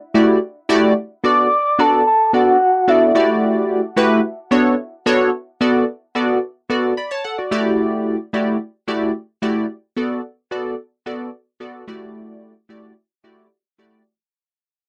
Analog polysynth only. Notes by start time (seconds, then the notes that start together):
0.14 A3 E4 F#4 G4 D5
0.69 A3 E4 F#4 G4 D5
1.24 B3 D4 F#4 A4 D5
1.79 B3 D4 F#4 A4 D5
2.33 B3 D4 F#4 A4 D5
2.88 B3 D4 F#4 A4 D5
3.15 A3 E4 F#4 G4 D5
3.96 A3 E4 F#4 G4 B4
4.51 B3 D4 F#4 A4 C#5
5.06 B3 D4 F#4 A4 C#5
5.61 B3 F#4 A4 D5
6.15 B3 F#4 A4 D5
6.70 B3 F#4 A4 D5
6.97 D5 B5
7.11 C#5 A5
7.24 A4 F#5
7.38 F#4 D5
7.51 A3 E4 F#4 G4 D5
8.33 A3 E4 F#4 G4 D5
8.88 A3 E4 F#4 G4 D5
9.42 A3 E4 F#4 G4 D5
9.97 B3 F#4 A4 D5
10.51 B3 F#4 A4 D5
11.06 B3 F#4 A4 D5
11.60 B3 F#4 A4 D5
11.87 A3 E4 F#4 G4 D5
12.69 A3 E4 F#4 G4 D5
13.24 A3 E4 F#4 G4 D5
13.78 A3 E4 F#4 G4 D5